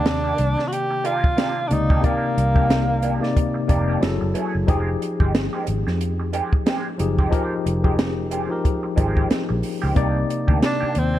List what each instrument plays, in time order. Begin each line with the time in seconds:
Already playing: tine electric piano C3 D#3 A#3 D5, tenor saxophone D4
0.06 fingered electric bass D#2, muted clean electric guitar stroke, snare, closed hi-hat
0.24 clean electric guitar D#3 A#3 D4 G4
0.38 fingered electric bass C2, muted clean electric guitar stroke, closed hi-hat
0.58 muted clean electric guitar stroke, snare
0.68 tenor saxophone F#4
0.72 tenor saxophone G4, closed hi-hat
0.91 muted clean electric guitar stroke
1.04 clean electric guitar D#3 A#3 D4 G4, tenor saxophone F4, closed hi-hat
1.24 muted clean electric guitar stroke, kick
1.37 clean electric guitar D#3 A#3 D4 G4, snare, closed hi-hat
1.67 tine electric piano C3 A#3, tenor saxophone D4, muted clean electric guitar stroke, closed hi-hat
1.71 fingered electric bass C#2, tine electric piano D#4 D5, tenor saxophone D#4
1.90 clean electric guitar D#3 A#3 D4 G4, kick
2.02 tine electric piano C3 A#3 D#4 D5, clean electric guitar D#3 A#3 D4, tenor saxophone A#3, kick, closed hi-hat
2.06 clean electric guitar G4
2.37 fingered electric bass C2, muted clean electric guitar stroke, closed hi-hat
2.54 tine electric piano C3 A#3 D#4 F5, clean electric guitar D#3 A#3 D4 G4, kick
2.70 muted clean electric guitar stroke, snare, closed hi-hat
3.02 clean electric guitar D#3 A#3 D4 G4, closed hi-hat
3.20 tine electric piano C3 A#3 D#4 D5, muted clean electric guitar stroke, snare
3.36 muted clean electric guitar stroke, kick, closed hi-hat
3.54 muted clean electric guitar stroke
3.67 fingered electric bass F1, tine electric piano C3 A#3 D#4 D5, clean electric guitar D#3 A#3 D4 G4, kick, closed hi-hat
3.88 clean electric guitar D#3 A#3 D4 G4
4.00 fingered electric bass F#1, tine electric piano F#3 E4 G#4 A4, snare, closed hi-hat
4.21 fingered electric bass F#1, muted clean electric guitar stroke
4.34 clean electric guitar E3 A3 C#4 G#4, closed hi-hat
4.54 fingered electric bass F#1, muted clean electric guitar stroke
4.67 fingered electric bass F1, clean electric guitar D#3 G#3 C4 G4, tine electric piano F3 D#4 G4 G#4, kick, closed hi-hat
5.01 muted clean electric guitar stroke, closed hi-hat
5.20 fingered electric bass G1, clean electric guitar D#3 G#3 C4 G4, kick
5.34 muted clean electric guitar stroke, snare, closed hi-hat
5.53 clean electric guitar D#3 G#3 C4 G4
5.67 fingered electric bass G#1, muted clean electric guitar stroke, closed hi-hat
5.87 fingered electric bass F2, muted clean electric guitar stroke, snare
6.01 closed hi-hat
6.20 muted clean electric guitar stroke
6.33 clean electric guitar D#3 G#3 C4 G4, closed hi-hat
6.53 muted clean electric guitar stroke, kick
6.66 clean electric guitar D#3 G#3 C4 G4, snare, closed hi-hat
6.98 fingered electric bass F#1, tine electric piano F3 D#4 G4 G#4, muted clean electric guitar stroke, closed hi-hat
7.19 clean electric guitar D#3 G#3 C4 G4, kick
7.30 clean electric guitar D#3 G#3 C4 G4, tine electric piano F3 D#4 G4 A#4, kick, closed hi-hat
7.65 fingered electric bass F1, muted clean electric guitar stroke, closed hi-hat
7.83 clean electric guitar D#3 G#3 C4 G4, tine electric piano F3 D#4 G4 G#4, kick
7.98 muted clean electric guitar stroke, snare, closed hi-hat
8.31 clean electric guitar D#3 G#3 C4 G4, closed hi-hat
8.49 tine electric piano F3 D#4 G4 A#4, muted clean electric guitar stroke
8.64 muted clean electric guitar stroke, kick, closed hi-hat
8.83 muted clean electric guitar stroke
8.96 fingered electric bass G#1, clean electric guitar D#3 G#3 C4 G4, tine electric piano F3 D#4 G4 G#4, kick, closed hi-hat
9.15 clean electric guitar D#3 G#3 C4 G4, kick
9.29 muted clean electric guitar stroke, muted fingered electric bass stroke, snare, closed hi-hat
9.49 fingered electric bass A#1, muted clean electric guitar stroke
9.63 open hi-hat
9.82 fingered electric bass C#2, clean electric guitar D#3 G#3 C4 G4
9.94 fingered electric bass C2, tine electric piano C3 A#3 D#4 D5, clean electric guitar D#3 A#3 D4 G4, kick, closed hi-hat
10.29 muted clean electric guitar stroke, closed hi-hat
10.48 fingered electric bass D2, clean electric guitar D#3 A#3 D4 G4, kick
10.62 tenor saxophone D4, muted clean electric guitar stroke, snare, closed hi-hat
10.80 clean electric guitar D#3 A#3 D4 G4, muted fingered electric bass stroke
10.95 fingered electric bass D#2, tenor saxophone C4, muted clean electric guitar stroke, closed hi-hat
11.14 muted clean electric guitar stroke